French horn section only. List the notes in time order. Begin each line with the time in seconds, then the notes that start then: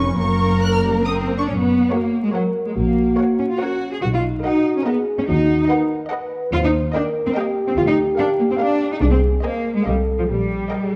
1.91 F#4
2.34 A#4
2.76 F#4
3.61 C#4
4.04 D#4
4.44 F#4
4.85 G#4
5.29 F#4
5.69 A#4
6.10 B4
6.52 C5
6.93 A#4
7.36 G4
8.99 G#4
9.42 A#4
9.84 A4
10.28 G4
10.72 A#4
10.83 G#4